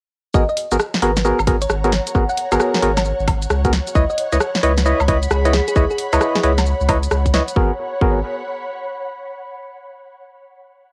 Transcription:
0.34 G#1 B3 F#4 G#4 A#4 C#5 D#5, kick, shaker
0.49 D#5, shaker
0.57 open hi-hat
0.70 G#1 B3 F#4 G#4 A#4 F#5, closed hi-hat, shaker
0.78 A#5, cross-stick, shaker
0.94 snare, shaker
1.02 G#1 B3 F#4 G#4 A#4 B4, open hi-hat
1.17 snare, closed hi-hat, shaker
1.25 B3 F#4 G#4 A#4, shaker
1.39 G#1, high woodblock, shaker
1.47 B3 F#4 G#4 A#4, kick, open hi-hat
1.62 C#5, closed hi-hat, shaker
1.70 G#1, cross-stick, shaker
1.84 B3 F#4 G#4 A#4, closed hi-hat, shaker
1.92 snare, open hi-hat
2.07 closed hi-hat, shaker
2.15 G#1 B3 F#4 G#4 A#4 F#5, kick, shaker
2.29 F#5, shaker
2.37 open hi-hat
2.52 G#1 B3 F#4 G#4 A#4, closed hi-hat, high woodblock, shaker
2.60 cross-stick, shaker
2.74 snare, shaker
2.82 G#1 B3 F#4 G#4 A#4, open hi-hat
2.97 snare, closed hi-hat, high woodblock, shaker
3.05 shaker
3.20 G#1, shaker
3.28 kick, open hi-hat, high woodblock
3.42 closed hi-hat, shaker
3.50 C#2, cross-stick, shaker
3.65 B3 F#4 G#4 A#4, kick, closed hi-hat, shaker
3.73 snare, open hi-hat
3.87 closed hi-hat, shaker
3.93 C#2 E4 B4 C#5 D#5 B5, kick, shaker
4.10 D#5, shaker
4.18 open hi-hat
4.32 C#2 E4 B4 C#5 D#5, closed hi-hat, shaker
4.40 cross-stick, shaker
4.55 snare, shaker
4.63 C#2 E4 B4 C#5 D#5, open hi-hat
4.77 snare, closed hi-hat, shaker
4.85 E4 B4 C#5 D#5, shaker
5.00 C#2, high woodblock, shaker
5.08 E4 B4 C#5 D#5, kick, open hi-hat
5.23 closed hi-hat, shaker
5.31 C#2 G#4, cross-stick, shaker
5.45 E4 B4 C#5 D#5, closed hi-hat, shaker
5.53 G#4, snare, open hi-hat
5.68 G#4, closed hi-hat, shaker
5.76 C#2 E4 G#4 B4 C#5 D#5, kick, shaker
5.90 G#4, shaker
5.98 open hi-hat
6.13 C#2 E4 B4 C#5 D#5, closed hi-hat, high woodblock, shaker
6.21 cross-stick, shaker
6.35 G#4, snare, shaker
6.43 C#2 E4 G#4 B4 C#5 D#5, open hi-hat
6.58 snare, closed hi-hat, high woodblock, shaker
6.66 shaker
6.81 C#2, shaker
6.89 E4 B4 C#5 D#5, kick, open hi-hat, high woodblock
7.03 closed hi-hat, shaker
7.11 C#2, cross-stick, shaker
7.26 kick, closed hi-hat, shaker
7.34 E4 B4 C#5 D#5, snare, open hi-hat
7.48 closed hi-hat, shaker
7.56 G#1 B3 F#4 G#4 A#4 C#5, kick
7.65 F#5
7.72 B5
8.01 G#1 B3 F#4 G#4 A#4, kick

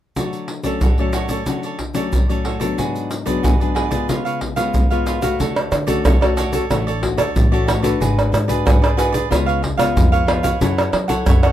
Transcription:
0.16 D3 F#3 A3 F#4 A4 C#5 D5, pandeiro, shaker, surdo
0.33 pandeiro, shaker
0.48 muted cavaquinho stroke, pandeiro
0.64 F#3 A3 C#4 A4 C#5 D5, pandeiro, shaker, surdo
0.81 A2 F#4 A4 C#5 D5, pandeiro, shaker, surdo
0.98 F#3 A3 C#4 A4 C#5 D5, pandeiro, shaker
1.13 F#4 A4 C#5 D5, pandeiro, shaker
1.29 F#3 A3 C#4 A4 C#5 D5, pandeiro, shaker, surdo
1.46 D3 F#3 A3 C#4 F#4 A4 C#5 D5, pandeiro, shaker, surdo
1.63 A4 C#5 D5, pandeiro, shaker
1.79 muted cavaquinho stroke, pandeiro, surdo
1.94 F#3 A3 C#4 A4 C#5 D5, pandeiro, shaker
2.12 A2, pandeiro, shaker, surdo
2.29 F#3 A3 C#4 A4 C#5 D5, pandeiro, shaker
2.44 F#4 A4 C#5 D5, pandeiro
2.60 F#3 B3 D4 A4 C#5 D5, pandeiro, shaker, surdo
2.78 G#2 F#4 G#4 B4 D5, pandeiro, shaker, surdo
2.95 pandeiro, shaker
3.11 muted cavaquinho stroke, pandeiro, shaker
3.26 F#3 B3 D4 G#4 B4 D5, pandeiro, shaker, surdo
3.43 G#2 F#4 G#4 B4 D5, pandeiro, shaker, surdo
3.60 F#3 B3 D4 G#4 B4 D5, pandeiro, shaker
3.75 F#4 G#4 B4 D5, pandeiro
3.91 G#3 B3 F4 G#4 B4 D5, pandeiro, shaker, surdo
4.09 C#3 F4 B4 C#5 F5, pandeiro, shaker, surdo
4.25 B4 C#5 F5, pandeiro, shaker
4.41 muted cavaquinho stroke, pandeiro, surdo
4.56 G#3 B3 F4 B4 C#5 F5, pandeiro, shaker
4.74 G#2, pandeiro, shaker, surdo
4.90 G#3 B3 F4 B4 C#5 F5, pandeiro, shaker
5.06 F4 B4 C#5 F5, pandeiro, shaker
5.22 A3 F#4 B4 C#5 F5, pandeiro, shaker, surdo
5.40 D2 D3 F#4 A4 C#5 D5, pandeiro, shaker, surdo
5.56 pandeiro, tamborim, shaker
5.72 D3, muted cavaquinho stroke, pandeiro, tamborim, shaker
5.87 A3 C#4 F#4 A4 C#5 D5, pandeiro, shaker, surdo
6.04 D2 A2 F#4 A4 C#5 D5, pandeiro, tamborim, shaker, surdo
6.21 A3 C#4 F#4 A4 C#5 D5, pandeiro, tamborim, shaker
6.37 F#4 A4 C#5 D5, pandeiro, shaker
6.52 A3 C#4 F#4 A4 C#5 D5, pandeiro, shaker, surdo
6.70 A1 D3 A3 C#4 F#4 A4 C#5 D5, pandeiro, tamborim, shaker, surdo
6.87 A4 C#5 D5, pandeiro, shaker
7.02 A3 C#4 F#4, muted cavaquinho stroke, pandeiro, surdo
7.18 D2 A4 C#5 D5, pandeiro, tamborim, shaker
7.35 A1 A2, pandeiro, shaker, surdo
7.52 A3 C#4 F#4 A4 C#5 D5, pandeiro, shaker
7.67 F#4 A4 C#5 D5, pandeiro, tamborim, shaker, surdo
7.82 D4 F#4 A4 B4 C#5 D5, pandeiro, shaker, surdo
8.00 G#1 G#3 F#4 G#4 B4 D5, pandeiro, shaker, surdo
8.19 pandeiro, tamborim, shaker
8.32 G#2, muted cavaquinho stroke, pandeiro, tamborim, shaker
8.48 D4 F#4 G#4 B4 D5, pandeiro, shaker, surdo
8.65 G#1 G#3 F#4 G#4 B4 D5, pandeiro, tamborim, shaker, surdo
8.82 G#4 B4 D5, pandeiro, tamborim, shaker
8.97 D4 F#4 G#4 B4 D5, pandeiro, shaker
9.12 G#4 B4 D5, pandeiro, shaker, surdo
9.30 C#2 C#3 G#3 B3 F4 B4 C#5 F5, pandeiro, tamborim, shaker, surdo
9.46 B4 C#5 F5, pandeiro, shaker
9.62 muted cavaquinho stroke, pandeiro, surdo
9.77 C#2 G#3 B3 F4 B4 C#5 F5, pandeiro, tamborim, shaker
9.96 F2 G#2, pandeiro, shaker, surdo
10.12 B4 C#5 F5, pandeiro, shaker
10.27 G#3 B3 F4 B4 C#5 F5, pandeiro, tamborim
10.43 B4 C#5 F5, pandeiro, shaker, surdo
10.61 F#2 F#3 C#4 E4 A4 C#5 F#5, pandeiro, shaker, surdo
10.78 pandeiro, tamborim, shaker
10.92 F#3, muted cavaquinho stroke, pandeiro, tamborim
11.08 C#4 E4 A4 C#5 F#5, pandeiro, shaker, surdo
11.26 F#2 C#3 E4 A4 C#5 F#5, pandeiro, tamborim, shaker, surdo
11.43 A4 C#5 F#5, pandeiro, tamborim, shaker

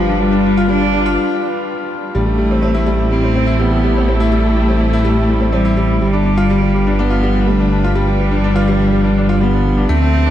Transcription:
Already playing: G1 F3 G3 D4 F4 B4
0.09 D4
0.20 G3
0.32 D4
0.45 D4
0.57 F4
0.69 G3 D4
0.81 D4
0.93 D4
1.06 F4
2.15 A1 G3 A3
2.26 G3 E4
2.38 G3
2.51 C4
2.62 C4
2.70 G4
2.74 E4
2.86 G3
2.99 G3
3.11 G3 C4
3.19 A4
3.23 C4
3.35 C4
3.47 E4
3.59 G3 B3
3.72 G3
3.84 G3
3.97 C4
4.08 A3 C4
4.20 E4
4.32 G3
4.44 G3
4.57 G3
4.68 C4
4.81 C4
4.93 E4
5.05 G3
5.18 G3
5.29 G3
5.41 C4
5.52 G3 C4
5.65 E4
5.77 G3
5.89 G3
6.01 G1 G3
6.13 D4
6.25 D4
6.37 F4
6.50 G3
6.62 G3 B4
6.74 G3
6.87 D4
6.92 F3
6.99 B3 D4
7.10 F4
7.23 G3
7.35 G3
7.47 G3 A3
7.60 D4
7.72 D4
7.84 F4
7.95 G3
8.07 G3
8.20 G3
8.31 D4
8.44 D4
8.56 F4
8.68 G3
8.80 G3
8.92 G3
9.05 D4
9.17 D4
9.29 F4
9.41 G3 B3
9.53 G3
9.66 G3
9.77 D4
9.89 D2 D3 A3 C4
10.02 A3
10.14 A3
10.26 D4

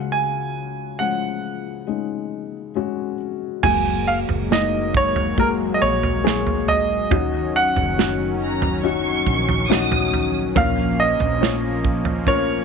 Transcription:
Already playing: C#2 C#3 G#3 C#4 F#4
0.12 G#5
0.99 F3 G#3 C#4 F#5
1.87 G#3 C#4 D#4
2.75 G#3 C#4 F#4
3.63 F#1 F#3 G#3 A#3 F#4 G#5, kick, floor tom, crash
4.08 F5
4.29 F#1, floor tom
4.51 G#3 A#3 D#4 D#5, snare
4.94 C#5, kick
5.16 floor tom
5.37 G#3 A#3 F#4 A#4, kick
5.74 D#5
5.82 A#1 C#5
6.03 floor tom
6.24 G#3 A#3 G#4, snare
6.47 floor tom
6.68 D#5, floor tom
7.11 F#1 D#3 F#3 C#4 D#4 F#4, kick, floor tom
7.56 F#5
7.76 F#1, floor tom
7.97 C#4 D#4 F#4, snare
8.43 A#5
8.62 floor tom
8.83 C#4 D#4 F#4 C#6
9.27 A#1, kick
9.49 floor tom
9.68 C#4 D#4 F#4 D#6, snare
9.92 floor tom
10.14 floor tom
10.55 A#1 A#2 F3 A#3 C#4 F4 A#4 F5, kick, floor tom
11.00 D#5
11.20 A#1, floor tom
11.41 C#4 F4 C#5, snare
11.85 kick
12.05 floor tom
12.27 C#4 F4 A#4 C#5, kick

